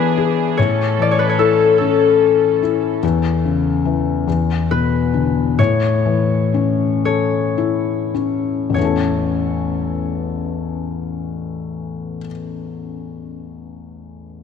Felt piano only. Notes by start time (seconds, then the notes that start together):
Already playing: E3 B3
0.17 G#4
0.59 A2
0.99 E3
1.39 E4
1.81 C#4
2.63 E4
3.03 E2
3.45 C#3
3.85 E3
4.27 E2
4.71 B2
5.14 D3
5.59 A2
6.05 E3
6.54 C#4
7.06 A4
7.58 E4
8.14 C#4
8.70 A1 E2
8.75 E3 A3
8.82 C#4 A4